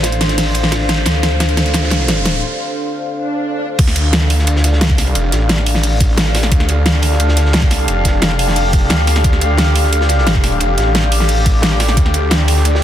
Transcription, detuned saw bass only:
0.00 1.05 A1 medium
1.06 2.41 D2 loud
3.79 4.74 D2 loud
4.74 5.01 C#2 loud
5.01 5.14 C2 loud
5.15 5.31 F1 loud
5.32 6.50 A1 loud
6.52 7.47 D2 loud
7.47 7.74 C#2 loud
7.74 7.87 C2 loud
7.88 8.04 F1 loud
8.05 8.89 F1 loud
8.90 9.23 D2 loud
9.24 10.59 D2 loud
10.61 10.76 F1 loud
10.78 11.96 A1 loud
11.97 12.83 D2 loud

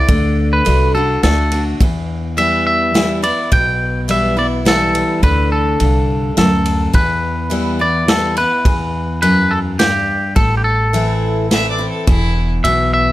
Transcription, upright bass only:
0.09 0.59 D2 medium
0.67 1.15 C2 medium
1.23 1.72 D2 medium
1.81 3.30 E2 medium
3.52 5.02 B1 medium
5.23 5.73 D2 medium
5.80 6.29 C2 medium
6.38 6.86 D2 medium
6.94 8.44 E2 medium
8.65 10.15 E2 medium
10.36 11.86 A1 medium
12.07 12.57 E1 medium
12.64 13.12 B1 medium

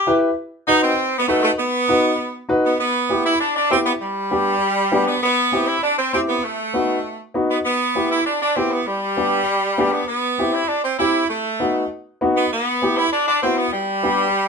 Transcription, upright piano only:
0.07 0.28 E4 medium
0.07 0.28 G4 medium
0.07 0.29 B4 medium
0.67 0.89 D#4 medium
0.67 0.89 F#4 medium
0.67 0.89 B4 medium
1.28 1.49 D#4 medium
1.28 1.49 F#4 medium
1.28 1.50 B4 medium
1.88 2.10 D#4 medium
1.88 2.10 F#4 medium
1.88 2.10 B4 medium
2.49 2.70 D#4 medium
2.49 2.71 F#4 medium
2.49 2.71 B4 medium
3.09 3.31 B3 medium
3.09 3.31 E4 medium
3.09 3.32 G4 medium
3.70 3.92 B3 medium
3.70 3.92 E4 medium
3.70 3.92 G4 medium
4.31 4.53 B3 medium
4.31 4.53 D4 medium
4.31 4.53 G4 medium
4.92 5.13 B3 medium
4.92 5.13 D4 medium
4.92 5.14 G4 medium
5.52 5.74 C4 medium
5.52 5.74 E4 medium
5.52 5.74 G4 medium
6.13 6.35 C4 medium
6.13 6.35 E4 medium
6.13 6.35 G4 medium
6.74 6.95 B3 medium
6.74 6.96 D#4 medium
6.74 6.96 F#4 medium
7.34 7.56 B3 medium
7.34 7.56 D#4 medium
7.34 7.57 F#4 medium
7.95 8.17 B3 medium
7.95 8.17 E4 medium
7.95 8.17 G4 medium
8.56 8.78 B3 medium
8.56 8.78 E4 medium
8.56 8.78 G4 medium
9.17 9.39 B3 medium
9.17 9.39 D4 medium
9.17 9.39 G4 medium
9.78 9.99 B3 medium
9.78 10.00 D4 medium
9.78 10.00 G4 medium
10.38 10.60 C4 medium
10.38 10.60 E4 medium
10.38 10.61 G4 medium
10.99 11.21 C4 medium
10.99 11.21 E4 medium
10.99 11.21 G4 medium
11.60 11.82 B3 medium
11.60 11.82 D#4 medium
11.60 11.82 F#4 medium
12.21 12.43 B3 medium
12.21 12.43 D#4 medium
12.21 12.43 F#4 medium
12.82 13.03 B3 medium
12.82 13.04 E4 medium
12.82 13.04 G4 medium
13.43 13.64 B3 medium
13.43 13.64 E4 medium
13.43 13.65 F#4 medium
14.03 14.25 B3 medium
14.03 14.25 D4 medium
14.03 14.25 G4 medium

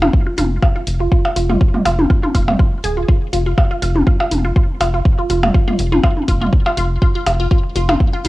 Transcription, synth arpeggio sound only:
0.02 0.06 F4 loud
0.27 0.33 F4 medium
0.38 0.43 F4 loud
0.62 0.69 F4 medium
0.76 0.80 F4 medium
1.00 1.06 F4 medium
1.12 1.16 F4 loud
1.36 1.43 F4 medium
1.50 1.54 F4 loud
1.74 1.80 F4 medium
1.85 1.90 F4 loud
2.10 2.17 F4 medium
2.23 2.27 F4 loud
2.35 2.42 F4 loud
2.48 2.52 C4 medium
2.59 2.64 F4 medium
2.84 2.88 G#4 medium
2.97 3.03 F4 medium
3.08 3.13 F4 loud
3.33 3.40 F4 loud
3.46 3.50 F4 loud
3.71 3.77 F4 loud
3.82 3.87 F4 loud
4.07 4.14 F4 loud
4.20 4.24 F4 loud
4.45 4.51 F4 loud
4.56 4.61 F4 loud
4.81 4.88 F4 loud
4.94 4.98 F4 loud
5.18 5.24 F4 medium
5.30 5.34 F4 loud
5.54 5.61 F4 loud
5.68 5.72 F4 loud
5.92 5.98 F4 loud
6.04 6.08 F4 loud
6.28 6.35 F4 loud
6.41 6.45 F4 medium
6.66 6.72 F4 loud
6.77 6.82 F4 loud
7.02 7.09 F4 loud
7.15 7.19 F4 loud
7.40 7.46 F4 loud
7.51 7.56 F4 medium
7.76 7.83 F4 loud
7.89 7.93 F4 loud
8.14 8.19 F4 loud
8.25 8.28 F4 loud

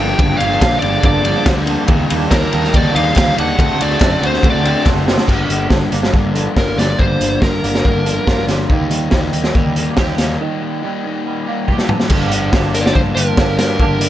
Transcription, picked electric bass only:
0.00 0.13 G1 medium
0.18 0.33 G1 loud
0.41 0.55 G1 medium
0.61 0.76 A#1 medium
0.83 0.97 G1 loud
1.03 1.33 G1 medium
1.46 1.75 D2 medium
1.88 2.03 D#2 medium
2.11 2.25 D#2 loud
2.31 2.46 D#2 medium
2.54 2.68 D#2 loud
2.73 2.88 D#2 medium
2.95 3.10 D#2 medium
3.17 3.31 D#2 medium
3.39 3.53 D#2 medium
3.59 3.73 D2 loud
3.81 3.95 D2 medium
4.01 4.15 F#2 medium
4.22 4.36 D2 medium
4.43 4.72 D2 medium
4.86 5.15 F#1 medium
5.27 5.44 G1 medium
5.49 5.66 G1 medium
5.70 5.87 G1 medium
5.93 6.09 G1 medium
6.13 6.47 G1 medium
6.57 6.73 G1 medium
6.77 6.94 G1 medium
6.98 7.15 G1 medium
7.21 7.37 G1 medium
7.42 7.58 G1 medium
7.64 7.80 G1 medium
7.85 8.18 G1 medium
8.27 8.44 G1 medium
8.47 8.64 G1 medium
8.70 8.87 D#2 medium
8.90 9.07 D#2 medium
9.12 9.29 D#2 medium
9.33 9.50 D#2 medium
9.55 9.88 D#2 medium
9.97 10.14 D#2 medium
10.19 10.36 D#2 medium
12.10 12.49 G1 medium
12.52 12.91 G1 medium
12.96 13.15 G1 medium
13.15 13.35 G1 medium
13.36 13.56 G1 medium
13.58 13.77 G2 medium
13.79 13.99 G1 medium
14.00 14.09 G1 medium

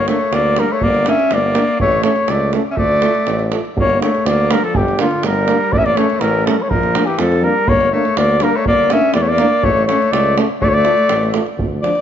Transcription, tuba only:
0.32 0.59 D2 medium
0.81 1.08 G1 medium
1.31 1.58 G1 medium
1.80 2.07 A1 medium
2.28 2.55 C#2 loud
2.77 3.04 D2 medium
3.27 3.54 A1 medium
3.76 4.03 G1 medium
4.25 4.52 D2 loud
4.74 5.01 G1 medium
5.23 5.50 G1 medium
5.72 5.99 A1 medium
6.21 6.48 A1 loud
6.71 6.97 A#1 medium
7.19 7.46 F2 loud
7.68 7.95 G1 medium
8.18 8.44 D2 loud
8.66 8.93 G1 medium
9.15 9.42 E2 loud
9.63 9.90 A1 medium
10.12 10.39 C#2 loud
10.62 10.88 D2 medium
11.09 11.37 A1 medium
11.58 11.85 D2 medium

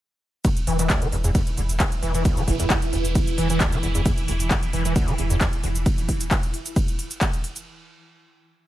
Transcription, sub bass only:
0.67 0.79 E1 loud
0.79 0.90 E1 medium
1.12 1.24 E1 loud
1.24 1.35 E1 medium
1.57 1.69 E1 loud
1.69 1.80 E1 medium
2.03 2.14 E1 loud
2.14 2.25 E1 medium
2.48 2.59 E1 loud
2.60 2.70 E1 medium
2.93 3.04 E1 loud
3.05 3.15 E1 medium
3.38 3.49 E1 loud
3.50 3.60 E1 medium
3.83 3.94 E1 medium
3.95 4.05 E1 medium
4.28 4.39 E1 loud
4.40 4.50 E1 medium
4.73 4.84 E1 loud
4.85 4.96 E1 medium
5.18 5.30 E1 loud
5.30 5.41 E1 medium
5.63 5.75 E1 medium
5.75 5.86 E1 medium

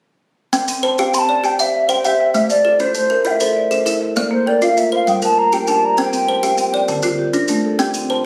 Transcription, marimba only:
0.69 0.99 C4 medium
0.84 1.29 A5 medium
0.99 1.44 F5 medium
1.15 1.44 C4 medium
1.29 1.74 G5 medium
1.44 1.89 A5 medium
1.59 1.89 C5 medium
1.75 2.20 F5 medium
1.89 2.35 E5 medium
2.06 2.35 G4 medium
2.20 2.65 G5 medium
2.35 2.65 F5 medium
2.50 2.80 A3 medium
2.65 3.10 F4 medium
2.95 3.25 A3 medium
3.11 3.56 E5 medium
3.26 3.71 F4 medium
3.41 3.71 A4 medium
3.56 4.01 D5 medium
3.71 4.16 C5 medium
3.86 4.16 E4 medium
4.01 4.46 E5 medium
4.16 4.46 D5 medium
4.31 4.61 A#3 medium
4.46 4.92 G5 medium
4.63 5.08 E5 medium
4.77 5.07 A#3 medium
4.92 5.37 F5 medium
5.07 5.37 G5 medium
5.23 5.53 G3 medium
5.38 5.83 C5 medium
5.53 5.98 A#4 medium
5.68 5.98 D4 medium
5.83 6.28 D5 medium
5.98 6.28 C5 medium
6.13 6.43 C4 medium
6.28 6.74 A5 medium
6.43 6.89 F5 medium
6.58 6.88 C4 medium
6.73 7.19 G5 medium
6.88 7.19 A5 medium
7.03 7.34 D3 medium
7.19 7.64 G4 medium
7.33 7.79 F4 medium
7.49 7.80 A3 medium
7.65 8.10 A4 medium
7.79 8.10 G4 medium
7.95 8.25 C4 medium
8.10 8.26 A5 medium

